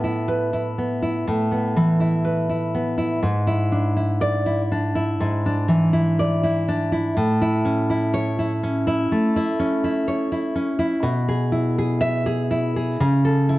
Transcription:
Already playing: A2 B3
0.04 E4
0.28 B4
0.53 E4
0.78 B3
1.02 E4
1.28 A2
1.52 B3
1.76 E3
2.00 E4
2.25 B4
2.49 E4
2.75 B3
2.98 E4
3.23 G#2
3.47 E4
3.72 D4
3.96 E4
4.21 D5
4.46 E4
4.72 D4
4.95 E4
5.20 G#2
5.46 D4
5.68 E3
5.93 E4
6.19 D5
6.43 E4
6.68 D4
6.92 E4
7.17 A2
7.42 E4
7.65 C#4
7.90 E4
8.14 C#5
8.39 E4
8.63 C#4
8.87 E4
9.12 A3
9.36 E4
9.59 C#4
9.84 E4
10.08 C#5
10.32 E4
10.55 C#4
10.79 E4
11.03 B2
11.29 G#4
11.52 E4
11.78 G#4
12.01 E5
12.26 G#4
12.51 E4
12.76 G#4
13.00 C#3
13.25 A4
13.49 E4

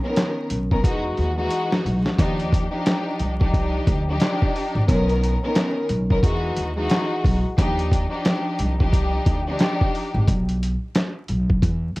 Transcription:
0.03 D#3 B3 C#4 A#4
0.16 snare, clap, closed hi-hat
0.50 B1, closed hi-hat
0.71 D#3 B3 C#4 A#4, kick
0.83 E2 E3 G#3 D#4 F#4, kick, closed hi-hat
1.17 D#2, closed hi-hat
1.36 E3 G#3 D#4 F#4
1.50 closed hi-hat
1.72 snare
1.86 B1, open hi-hat
2.06 snare
2.18 D#2 F3 D4 D#4 G4, kick, closed hi-hat
2.40 closed hi-hat
2.52 kick, closed hi-hat
2.71 F3 D4 D#4 G4
2.86 snare, clap, closed hi-hat
3.19 C2, closed hi-hat
3.40 F3 D4 D#4 G4, kick
3.53 kick, closed hi-hat
3.87 D2, kick, closed hi-hat
4.08 F3 D4 D#4 G4
4.20 snare, clap, closed hi-hat
4.42 kick
4.56 open hi-hat
4.75 G#1
4.87 B1 D#3 B3 C#4 A#4, kick, closed hi-hat
5.09 closed hi-hat
5.24 closed hi-hat
5.43 D#3 B3 C#4 A#4
5.55 snare, clap, closed hi-hat
5.89 B1, closed hi-hat
6.10 D#3 B3 C#4 A#4, kick
6.22 E2 E3 G#3 D#4 F#4, kick, closed hi-hat
6.57 D#2, closed hi-hat
6.76 E3 G#3 D#4 F#4
6.90 snare, clap, closed hi-hat
7.24 B1, kick, open hi-hat
7.58 D#2 F3 D4 D#4 G4, kick, closed hi-hat
7.79 closed hi-hat
7.92 kick, closed hi-hat
8.10 F3 D4 D#4 G4
8.25 snare, clap, closed hi-hat
8.59 C2, closed hi-hat
8.79 F3 D4 D#4 G4, kick
8.93 kick, closed hi-hat
9.26 D2, kick, closed hi-hat
9.47 F3 D4 D#4 G4
9.59 snare, clap, closed hi-hat
9.81 kick
9.95 open hi-hat
10.14 G#1
10.28 B1, kick, closed hi-hat
10.49 closed hi-hat
10.63 closed hi-hat
10.95 snare, clap, closed hi-hat
11.28 B1, closed hi-hat
11.50 kick
11.62 E2, kick, closed hi-hat
11.96 D#2, closed hi-hat

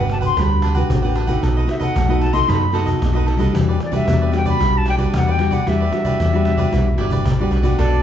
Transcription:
Already playing: G1 D3 B4 F#5
0.00 D4 F#4 G4 B4
0.09 A5, cajon slap
0.21 G4 B4 F#5, cajon bass
0.25 C6
0.36 D2 G3 D4 F#4 G4 B4 F#5 B5, cajon bass, cajon slap
0.51 muted cavaquinho stroke
0.62 D4 G4 B4 F#5, cajon slap
0.75 D4 F#4 G4 B4 F#5, cajon bass
0.90 A1 D3, cajon bass, cajon slap
1.03 D4 F#4 G4 B4 F#5
1.15 D4 G4 B4 F#5, cajon slap
1.27 A3 D#4 F#4 G4 B4 F#5, cajon bass
1.42 B1 B2 D#4 A4 B4 D#5, cajon bass, cajon slap
1.57 A4 B4 D#5
1.67 A3 D#4 F#4 E5, muted cavaquinho stroke, cajon slap
1.79 A4 B4 D#5 F#5, cajon bass
1.94 B1 F#3 D#4 A4 B4 D#5, cajon bass, cajon slap
2.08 A3 D#4 F#4 A4 B4 D#5
2.21 A5, cajon slap
2.33 A3 D#4 F#4 A4 B4 D#5 C6, cajon bass
2.47 F#2 B2 A3 D#4 F#4 A4 B4 D#5 B5, cajon bass, cajon slap
2.63 muted cavaquinho stroke
2.72 A3 D#4 F#4 A4 B4 D#5, cajon slap
2.86 A4 B4 D#5, cajon bass
2.99 B1 F#3, cajon bass, cajon slap
3.13 A3 D#4 F#4 B4 D#5
3.17 A4
3.26 D#4 A4 B4 D#5, cajon slap
3.37 G3 D4 F#4 A4 B4 D#5, cajon bass
3.52 E2 E3 E4 G4 B4, cajon bass, cajon slap
3.56 D5
3.68 G4 B4 D5
3.79 D5, muted cavaquinho stroke, cajon slap
3.91 G3 D4 F#4 G4 B4 D5 E5, cajon bass
4.05 E2 B2 E4 G4 B4, cajon bass, cajon slap
4.10 D5
4.21 G4 B4 D5
4.32 G3 D4 F#4, cajon slap
4.37 G5
4.45 G4 B4 D5 B5, cajon bass
4.59 B1 E3 G3 D4 E4 F#4 G4 B4 D5, cajon bass, cajon slap
4.75 A5, muted cavaquinho stroke
4.86 E4 G4 B4 D5 G5, cajon slap
4.98 G3 D4 F#4 G4 B4 D5, cajon bass
5.13 E2 B2 F#5, cajon bass, cajon slap
5.27 G4 B4 D5
5.31 G5
5.38 G3 D4 E4 F#4 G4 B4 D5, cajon slap
5.51 G4 B4 D5 F#5, cajon bass
5.66 E2 E3 G3 D4 E4 F#4 G4 B4 D5 E5, cajon bass, cajon slap
5.80 G4 B4 D5
5.91 G3 D4 F#4, muted cavaquinho stroke, cajon slap
6.05 G4 B4 D5, cajon bass
6.19 E2 B2 E4 G4 B4 D5, cajon bass, cajon slap
6.33 G3 D4 F#4 G4 B4 D5
6.45 cajon slap
6.57 G3 D4 F#4 G4 B4 D5, cajon bass
6.71 B1 E3 G3 D4 E4 F#4 G4 B4 D5, cajon bass, cajon slap
6.87 muted cavaquinho stroke
6.97 G1 G3 D4 E4 F#4 G4 B4 D5, cajon slap
7.10 G4 B4 D5, cajon bass
7.24 A1 B2, cajon bass, cajon slap
7.39 G3 D4 F#4 G4 B4 D5
7.51 B1 E4 G4 B4 D5, cajon slap
7.62 A3 D4 F#4 G4 B4 D5, cajon bass
7.78 B1 B2 D4 A4 B4 D5, cajon bass, cajon slap

